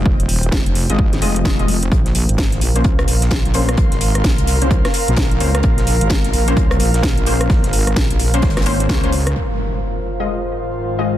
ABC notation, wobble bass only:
X:1
M:4/4
L:1/16
Q:"Swing 16ths" 1/4=129
K:Bbdor
V:1 name="Wobble bass" clef=bass
F,,, E,,,3 F,,, F,,,2 A,,,3 F,,,4 F,,,2 | B,,,3 A,,,3 B,,,2 C,,2 B,,,3 B,,,3 | B,,, A,,,3 B,,, C,,4 z2 B,,,3 D,,2 | B,,,3 A,,,3 B,,,2 C,,2 B,,,3 B,,,3 |
B,,, A,,,3 B,,, B,,,3 A,,,4 D,, D,,3 | z16 |]